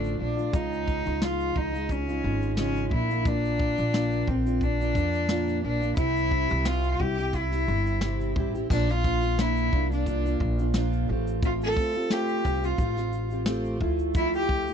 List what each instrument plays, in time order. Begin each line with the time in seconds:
Already playing: upright bass A1, steel-string acoustic guitar D3 F3 A3 D4 F4, cello D4
0.04 shaker
0.19 upright bass A#1, steel-string acoustic guitar F3 A3 D4 F4, cello D4
0.37 steel-string acoustic guitar A3 D4 F4, shaker
0.52 upright bass C#2, steel-string acoustic guitar C#3 F3 G#3 D#4 F4, cello D#4, kick, shaker
0.73 shaker
0.88 kick, shaker
1.06 upright bass C#2, steel-string acoustic guitar G#3 D#4 F4, shaker
1.21 steel-string acoustic guitar C#3 F3 G#3 D#4 F4, cello F4, snare, shaker
1.40 shaker
1.55 upright bass C#2, steel-string acoustic guitar F3 G#3 D#4 F4, cello D#4, kick
1.74 steel-string acoustic guitar G#3 D#4 F4, shaker
1.89 cello C#4, kick, shaker
2.08 steel-string acoustic guitar G#3 D#4 F4, shaker
2.23 upright bass G#1, steel-string acoustic guitar F3 G#3 D#4 F4
2.42 shaker
2.57 steel-string acoustic guitar C#3 F3 G#3 D#4 F4, cello C#4, snare, shaker
2.76 shaker
2.91 upright bass A#1, steel-string acoustic guitar F3 A#3 D4 F4, cello E4, kick
3.10 steel-string acoustic guitar A#3 D4 F4, shaker
3.25 steel-string acoustic guitar A#2 F3 A#3 D4 F4, cello D4, kick, shaker
3.45 shaker
3.59 kick
3.78 upright bass A#1, steel-string acoustic guitar A#3 D4 F4, shaker
3.93 steel-string acoustic guitar A#2 F3 A#3 D4 F4, snare, shaker
4.11 shaker
4.27 upright bass A#1, steel-string acoustic guitar F3 A#3 D4 F4, cello C4, kick
4.46 steel-string acoustic guitar A#3 D4 F4, shaker
4.61 cello D4, kick, shaker
4.79 steel-string acoustic guitar A#3 D4 F4, shaker
4.95 upright bass F2, steel-string acoustic guitar F3 A#3 D4 F4, kick, shaker
5.14 shaker
5.29 steel-string acoustic guitar A#2 F3 A#3 D4 F4, snare, shaker
5.48 shaker
5.62 upright bass A#1, steel-string acoustic guitar F3 A#3 D4 F4, cello D4
5.82 steel-string acoustic guitar A#3 D4 F4, shaker
5.96 upright bass C2, steel-string acoustic guitar C3 G3 C4 E4 G4, cello E4, kick, shaker
6.16 shaker
6.31 kick
6.49 upright bass C2, steel-string acoustic guitar C4 E4 G4, shaker
6.65 steel-string acoustic guitar C3 G3 C4 G4, cello F4, snare, shaker
6.84 shaker
6.99 upright bass C2, steel-string acoustic guitar G3 C4 E4 G4, cello G4, kick
7.19 steel-string acoustic guitar C4 E4, shaker
7.33 cello E4, kick, shaker
7.52 steel-string acoustic guitar C4 E4 G4, snare, shaker
7.67 upright bass G1, steel-string acoustic guitar G3 C4 E4 G4, shaker
7.86 shaker
8.01 steel-string acoustic guitar C3 G3 C4 E4 G4, snare, shaker
8.20 shaker
8.35 upright bass A1, steel-string acoustic guitar G3 C4 E4 G4, kick
8.55 steel-string acoustic guitar C4 E4 G4, shaker
8.69 upright bass A#1, steel-string acoustic guitar A#2 F3 A#3 D4 F4, cello D4, kick, crash
8.89 steel-string acoustic guitar D4 F4, cello F4, shaker
9.04 steel-string acoustic guitar F3 A#3 D4 F4, kick, shaker
9.22 steel-string acoustic guitar A#3 D4 F4, shaker
9.38 steel-string acoustic guitar A#2 F3 A#3 D4, cello E4, snare, shaker
9.57 shaker
9.72 upright bass C2, steel-string acoustic guitar F3 A#3 D4 F4, kick
9.90 steel-string acoustic guitar A#3 D4 F4, cello D4, shaker
10.06 steel-string acoustic guitar F3 A#3 D4 F4, kick, shaker
10.25 steel-string acoustic guitar A#3 D4 F4, shaker
10.40 upright bass A#1, kick
10.59 steel-string acoustic guitar A#3 D4 F4, shaker
10.74 steel-string acoustic guitar A#2 F3 A#3 D4 F4, snare, shaker
10.93 shaker
11.09 upright bass A1, steel-string acoustic guitar A3 C4 F4 G4
11.27 shaker
11.42 steel-string acoustic guitar A3 C4 F4 G4, cello F4, kick, shaker
11.62 cello A4, shaker
11.76 steel-string acoustic guitar A3 C4 F4 G4, kick
11.94 steel-string acoustic guitar C4 F4 G4, shaker
12.10 steel-string acoustic guitar A3 C4 F4 G4, cello G4, snare, shaker
12.28 shaker
12.44 upright bass C2, steel-string acoustic guitar A3 C4 F4 G4, kick, shaker
12.63 steel-string acoustic guitar C4 F4 G4, cello F4, shaker
12.78 upright bass A1, steel-string acoustic guitar A3 C4 F4 G4, kick, shaker
12.97 steel-string acoustic guitar C4 F4 G4, snare, shaker
13.13 shaker
13.31 steel-string acoustic guitar C4 F4 G4, shaker
13.46 steel-string acoustic guitar A3 C4 F4 G4, snare, shaker
13.65 shaker
13.80 upright bass D2, steel-string acoustic guitar F3 A3 E4 F4, kick
13.99 shaker
14.14 steel-string acoustic guitar D3 F3 A3 E4 F4, cello E4, kick, shaker
14.34 cello G4, shaker
14.49 steel-string acoustic guitar F3 A3 E4 F4, kick
14.67 steel-string acoustic guitar A3 E4 F4, shaker